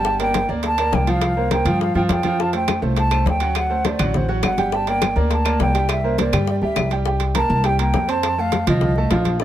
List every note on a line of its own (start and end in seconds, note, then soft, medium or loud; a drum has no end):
0.00 0.43 G1 medium
0.00 0.21 A5 loud
0.05 0.17 G3 medium
0.05 0.17 G4 medium
0.05 0.17 G5 medium
0.05 high bongo medium
0.05 high conga soft
0.19 0.43 A#3 medium
0.19 0.44 A#4 medium
0.19 0.44 D5 medium
0.19 0.48 G5 loud
0.19 high bongo soft
0.19 high conga soft
0.19 high timbale medium
0.34 high bongo medium
0.34 high conga loud
0.34 high timbale medium
0.34 low timbale medium
0.48 0.90 D2 medium
0.48 0.72 A#3 medium
0.48 0.73 A#4 medium
0.48 0.73 D5 medium
0.48 high bongo soft
0.48 high conga soft
0.63 0.96 A5 loud
0.63 high bongo medium
0.63 high conga soft
0.63 high timbale medium
0.78 1.02 A#3 medium
0.78 1.02 A#4 medium
0.78 1.02 D5 medium
0.78 high bongo soft
0.78 high conga soft
0.78 high timbale medium
0.92 1.60 C2 medium
0.92 1.12 G5 loud
0.92 high bongo medium
0.92 low bongo medium
0.92 high conga medium
0.92 low timbale medium
1.07 1.31 F3 medium
1.07 1.31 F4 medium
1.07 1.31 F5 medium
1.07 1.52 F5 loud
1.07 high conga soft
1.07 high timbale medium
1.21 high bongo medium
1.21 high conga soft
1.21 high timbale medium
1.37 1.49 A#3 medium
1.37 1.49 A#4 medium
1.37 1.49 C5 medium
1.37 high conga soft
1.51 1.63 A#3 medium
1.51 1.64 A#4 medium
1.51 1.64 C5 medium
1.51 1.79 G5 loud
1.51 high bongo medium
1.51 high conga medium
1.51 high timbale medium
1.51 low timbale medium
1.65 1.93 G2 loud
1.65 1.90 F3 medium
1.65 1.90 F4 medium
1.65 1.90 F5 medium
1.65 high bongo soft
1.65 high conga soft
1.65 low conga medium
1.65 high timbale medium
1.81 1.95 F5 medium
1.81 high bongo medium
1.81 high conga soft
1.94 2.08 G2 medium
1.94 2.19 F3 loud
1.94 2.19 F4 medium
1.94 2.19 F5 medium
1.94 2.03 G5 medium
1.94 high bongo soft
1.94 high conga soft
2.09 2.77 F2 medium
2.09 2.42 G5 medium
2.09 high bongo medium
2.09 low bongo medium
2.09 high conga medium
2.09 high timbale medium
2.09 low timbale medium
2.23 2.36 F3 medium
2.23 2.36 F4 medium
2.23 2.36 F5 medium
2.23 high bongo soft
2.23 high conga medium
2.23 high timbale medium
2.39 2.51 F3 medium
2.39 2.51 F4 medium
2.39 2.51 F5 medium
2.39 2.54 A5 loud
2.39 high bongo medium
2.39 high conga soft
2.53 2.77 A3 medium
2.53 2.77 A4 medium
2.53 2.77 C5 medium
2.53 2.79 G5 medium
2.53 high bongo soft
2.53 high conga soft
2.53 high timbale medium
2.68 high bongo medium
2.68 high conga loud
2.68 high timbale loud
2.68 low timbale medium
2.68 claves medium
2.82 3.23 C2 medium
2.82 3.06 A3 medium
2.82 3.06 A4 medium
2.82 3.06 C5 medium
2.82 high bongo soft
2.82 high conga soft
2.96 3.25 A5 loud
2.96 high bongo medium
2.96 high conga soft
2.96 high timbale medium
3.11 3.35 A3 medium
3.11 3.36 A4 medium
3.11 3.36 C5 medium
3.11 high bongo soft
3.11 high conga soft
3.11 high timbale medium
3.11 claves medium
3.26 3.94 D2 medium
3.26 3.55 G5 loud
3.26 high bongo medium
3.26 low bongo medium
3.26 high conga medium
3.26 low timbale medium
3.40 3.65 F#3 medium
3.40 3.65 F#4 medium
3.40 3.65 F#5 medium
3.40 high conga soft
3.40 high timbale medium
3.55 3.88 F#5 medium
3.55 high bongo medium
3.55 high conga soft
3.55 high timbale medium
3.55 claves medium
3.70 3.82 A3 medium
3.70 3.82 A4 medium
3.70 3.82 C5 medium
3.70 high conga soft
3.85 3.97 A3 medium
3.85 3.97 A4 medium
3.85 3.97 C5 medium
3.85 4.18 D5 medium
3.85 high bongo medium
3.85 high conga loud
3.85 high timbale medium
3.85 low timbale medium
3.99 4.40 A1 loud
3.99 4.23 F#3 medium
3.99 4.23 F#4 loud
3.99 4.24 F#5 medium
3.99 high bongo soft
3.99 high conga soft
3.99 low conga medium
3.99 high timbale loud
3.99 claves medium
4.14 4.30 C5 medium
4.14 high bongo medium
4.14 high conga soft
4.14 low conga medium
4.28 4.53 F#3 medium
4.28 4.53 F#4 medium
4.28 4.53 F#5 medium
4.28 high bongo soft
4.43 5.11 G1 medium
4.43 4.71 F#5 loud
4.43 high bongo medium
4.43 low bongo medium
4.43 high conga medium
4.43 high timbale medium
4.43 low timbale medium
4.43 claves medium
4.58 4.70 G3 medium
4.58 4.70 G4 medium
4.58 4.70 G5 loud
4.58 high bongo soft
4.58 high conga medium
4.58 high timbale medium
4.72 4.85 G3 medium
4.72 4.85 G4 medium
4.72 4.85 G5 medium
4.72 4.87 A5 medium
4.72 high bongo medium
4.72 high conga soft
4.87 5.11 A#3 medium
4.87 5.11 A#4 medium
4.87 5.12 D5 medium
4.87 5.15 G5 loud
4.87 high bongo soft
4.87 high conga soft
4.87 high timbale medium
5.01 high bongo medium
5.01 high conga loud
5.01 high timbale loud
5.01 low timbale medium
5.01 claves medium
5.16 5.57 D2 medium
5.16 5.40 A#3 medium
5.16 5.40 A#4 medium
5.16 5.40 D5 medium
5.16 high bongo soft
5.16 high conga soft
5.31 5.59 A5 medium
5.31 high bongo medium
5.31 high conga soft
5.31 high timbale medium
5.45 5.69 A#3 medium
5.45 5.69 A#4 medium
5.45 5.70 D5 medium
5.45 high bongo soft
5.45 high conga soft
5.45 high timbale medium
5.45 claves medium
5.59 6.27 C2 medium
5.59 5.88 G5 medium
5.59 high bongo medium
5.59 low bongo medium
5.59 high conga medium
5.59 low timbale medium
5.74 5.98 G3 loud
5.74 5.99 G4 medium
5.74 5.99 G5 medium
5.74 high conga soft
5.74 high timbale medium
5.89 6.17 E5 medium
5.89 high bongo medium
5.89 high conga soft
5.89 high timbale medium
5.89 claves medium
6.04 6.16 A#3 medium
6.04 6.16 A#4 medium
6.04 6.16 C5 medium
6.04 high conga soft
6.18 6.31 A#3 medium
6.18 6.31 A#4 medium
6.18 6.31 C5 medium
6.18 6.47 D5 medium
6.18 high bongo medium
6.18 high conga medium
6.18 high timbale medium
6.18 low timbale medium
6.32 6.60 G2 medium
6.32 6.57 G3 medium
6.32 6.57 G4 loud
6.32 6.57 G5 loud
6.32 high bongo soft
6.32 high conga soft
6.32 low conga medium
6.32 high timbale loud
6.32 claves medium
6.47 6.56 D5 medium
6.47 high bongo medium
6.47 high conga soft
6.61 6.76 D2 medium
6.61 6.86 G3 medium
6.61 6.87 G4 medium
6.61 6.91 E5 medium
6.61 6.87 G5 medium
6.61 high bongo soft
6.61 high conga soft
6.76 7.44 C2 medium
6.76 high bongo medium
6.76 low bongo medium
6.76 high conga medium
6.76 high timbale medium
6.76 low timbale medium
6.76 claves medium
6.90 7.04 G3 medium
6.90 7.04 G4 medium
6.90 7.04 G5 medium
6.90 high bongo soft
6.90 high timbale medium
7.06 7.31 G3 medium
7.06 7.31 G4 medium
7.06 7.31 G5 medium
7.06 high bongo medium
7.06 high conga soft
7.20 high bongo soft
7.20 high conga soft
7.20 high timbale medium
7.35 7.59 A#3 medium
7.35 7.60 A#4 medium
7.35 7.68 A5 loud
7.35 7.60 A#5 medium
7.35 high bongo medium
7.35 high conga medium
7.35 high timbale loud
7.35 low timbale medium
7.49 7.91 C2 loud
7.49 high bongo soft
7.49 high conga soft
7.64 7.77 G3 medium
7.64 7.77 G4 medium
7.64 7.77 G5 medium
7.64 7.80 G5 loud
7.64 high bongo medium
7.64 high conga soft
7.64 high timbale medium
7.79 8.03 A#3 medium
7.79 8.03 A#4 medium
7.79 8.12 G5 medium
7.79 8.03 A#5 medium
7.79 high bongo soft
7.79 high conga soft
7.79 high timbale medium
7.94 8.62 F2 medium
7.94 high bongo medium
7.94 low bongo medium
7.94 high conga medium
7.94 low timbale medium
8.08 8.32 C4 medium
8.08 8.33 C5 medium
8.08 8.41 A5 loud
8.08 8.33 C6 medium
8.08 high conga soft
8.08 high timbale medium
8.23 high bongo medium
8.23 high conga soft
8.23 high timbale medium
8.38 8.62 A3 medium
8.38 8.62 A4 medium
8.38 8.68 F5 loud
8.38 8.63 A5 medium
8.38 high conga soft
8.52 high bongo medium
8.52 high conga medium
8.52 high timbale medium
8.52 low timbale medium
8.67 9.08 C2 loud
8.67 8.91 F3 loud
8.67 8.92 F4 loud
8.67 9.23 D#5 medium
8.67 8.92 F5 medium
8.67 high bongo soft
8.67 high conga soft
8.67 low conga medium
8.67 high timbale medium
8.81 high bongo medium
8.81 high conga soft
8.81 low conga medium
8.96 9.09 A3 medium
8.96 9.09 A4 medium
8.96 9.09 A5 medium
8.96 high bongo soft
8.96 high conga soft
9.11 9.44 A#1 medium
9.11 9.35 F3 medium
9.11 9.35 F4 medium
9.11 9.36 F5 medium
9.11 high bongo medium
9.11 low bongo medium
9.11 high conga medium
9.11 high timbale medium
9.11 low timbale medium
9.25 high bongo soft
9.25 high conga medium
9.25 high timbale medium
9.40 9.44 D3 medium
9.40 9.44 D4 medium
9.40 high bongo medium